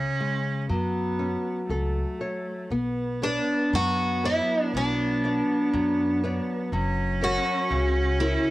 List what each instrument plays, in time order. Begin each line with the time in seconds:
Already playing: nylon-string guitar C#3, cello C#4
0.20 nylon-string guitar G#3
0.69 upright bass F#2, nylon-string guitar F#3, cello B3
1.19 nylon-string guitar C#4
1.69 upright bass C#2, cello A3, nylon-string guitar A4
2.21 nylon-string guitar C#5
2.70 upright bass B1, nylon-string guitar B3, cello B3
3.22 twelve-string acoustic guitar D4, nylon-string guitar B4 C#5 D5
3.73 upright bass F#2, nylon-string guitar F#3, twelve-string acoustic guitar F#4
4.24 twelve-string acoustic guitar E4, nylon-string guitar B4 C#5 D5
4.74 upright bass B1, nylon-string guitar F#3, twelve-string acoustic guitar D4
5.24 nylon-string guitar B4 C#5 D5
5.73 upright bass F#2, nylon-string guitar F#3
6.24 nylon-string guitar B4 C#5 D5
6.72 upright bass F#1, nylon-string guitar F#3, cello C#4
7.21 nylon-string guitar F#4 A#4 C#5, twelve-string acoustic guitar F#4
7.71 upright bass C#2, nylon-string guitar C#3
8.20 twelve-string acoustic guitar E4, nylon-string guitar F#4 A#4 C#5